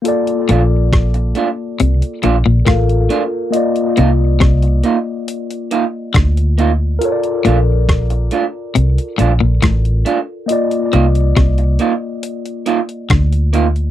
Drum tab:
HH |xxx-xxx-xxx-xxx-|xxx-xxx-xxx-xxx-|xxx-xxx-xxx-xxx-|xxxxxxx-xxxxxxxx|
SD |----r-------r---|----r-------r---|----r-------r---|----r-------r---|
BD |----o-------o---|----o-------o---|----o-------o---|----o-------o---|